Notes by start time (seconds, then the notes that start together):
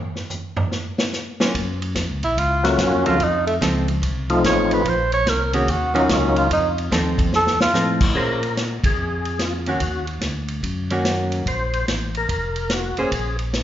0.15 snare
0.30 floor tom, hi-hat pedal
0.57 floor tom
0.71 snare
0.98 snare
1.13 snare, hi-hat pedal
1.40 F#3 A#3 C#4 F4, snare
1.55 F#2, kick, ride
1.82 ride
1.95 F2, kick, snare, hi-hat pedal, ride
2.10 C#2
2.23 A#1 E4, ride
2.37 C#2 F4, kick, ride
2.63 F#3 A3 A#3 C#4 F4 F#4, snare, ride
2.78 F#2 C#4, kick, snare, hi-hat pedal, ride
2.93 F2
3.06 C#2 F3 C4 D#4 F4 A4, ride
3.20 F2 D#4, kick, ride
3.47 A3, ride
3.61 C#2 F3 C4 D#4 A4, kick, snare, hi-hat pedal, ride
3.88 ride
4.02 C2, kick, ride
4.30 F3 A3 C4 D#4 F4, ride
4.44 A1 C#5, kick, snare, hi-hat pedal, ride
4.71 B4, ride
4.85 A#1, kick, ride
4.89 C5
5.12 C#5, ride
5.26 C2 A#4, kick, snare, hi-hat pedal, ride
5.53 D#3 A#3 C#4 F#4 G#4, ride
5.68 D#2 F#4, kick, ride
5.94 D#3 F#3 A#3 C#4 D#4 F4 F#4, ride
6.09 C#2 C#4, kick, snare, hi-hat pedal, ride
6.36 F4, ride
6.50 F2 D#4, kick, ride
6.78 ride
6.92 D#2 F3 C4 D#4 A4, kick, snare, hi-hat pedal, ride
7.18 kick, ride
7.33 F2 A4, snare
7.47 snare
7.60 F2 F4, snare
7.73 A2 F3 C4 D#4 A4, snare, hi-hat pedal
8.01 kick, crash
8.14 A#2 A#3 C#4 G#4 A#4 C5, kick
8.43 ride
8.57 snare, hi-hat pedal, ride
8.84 A#2 G#4, kick, ride
8.97 F2
9.25 ride
9.39 F4, snare, hi-hat pedal, ride
9.66 D#3 A#3 C#4 F#4, ride
9.80 D#2, kick, ride
10.07 ride
10.21 D2, snare, hi-hat pedal, ride
10.48 ride
10.63 F#2, kick, ride
10.90 D#3 A#3 C#4 F#4, ride
11.05 snare, hi-hat pedal, ride
11.32 ride
11.46 A#1 C5, kick, ride
11.73 ride
11.88 A1, snare, hi-hat pedal, ride
12.15 A#4, ride
12.29 F1, kick, ride
12.56 ride
12.70 F#4, snare, hi-hat pedal, ride
12.97 F1 A#3 C#4 G#4 C5, ride
13.11 A#1, kick, ride
13.39 ride
13.53 snare, hi-hat pedal, ride